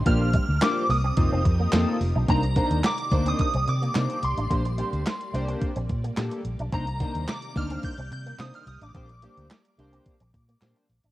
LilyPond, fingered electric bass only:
\new Staff \with { instrumentName = "Fingered electric bass" } { \clef bass \time 4/4 \key bes \major \tempo 4 = 108 bes,,8. d,16 r8 c,8 f,,16 f,,16 f,8 f,16 r16 f,,16 ces,16 | c,8. ees,16 r8 d,8 r16 c,16 c8 c16 r16 c,16 a,,16 | bes,,8. d,16 r8 c,8 r16 bes,,16 bes,8 bes,16 r16 bes,,16 ces,16 | c,8. ees,16 r8 d,8 r16 c,16 c8 c16 r16 c,16 a,,16 |
bes,,8. d,16 r8 c,8 r16 bes,,16 bes,8 bes,16 r16 bes,,16 a,,16 | }